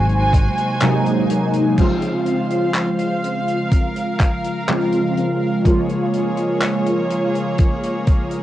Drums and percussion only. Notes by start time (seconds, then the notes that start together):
0.09 closed hi-hat
0.33 kick, closed hi-hat
0.58 closed hi-hat
0.80 clap, closed hi-hat
1.06 closed hi-hat
1.30 closed hi-hat
1.53 closed hi-hat
1.78 kick, closed hi-hat, crash
2.02 closed hi-hat
2.26 closed hi-hat
2.51 closed hi-hat
2.75 clap, closed hi-hat
2.99 closed hi-hat
3.24 closed hi-hat
3.48 closed hi-hat
3.71 kick, closed hi-hat
3.96 closed hi-hat
4.20 kick, clap, closed hi-hat
4.44 closed hi-hat
4.68 clap, closed hi-hat
4.92 closed hi-hat
5.17 closed hi-hat
5.65 kick, closed hi-hat
5.89 closed hi-hat
6.13 closed hi-hat
6.37 closed hi-hat
6.62 clap, closed hi-hat
6.86 closed hi-hat
7.10 closed hi-hat
7.35 closed hi-hat
7.58 kick, closed hi-hat
7.83 closed hi-hat
8.07 kick, closed hi-hat
8.31 closed hi-hat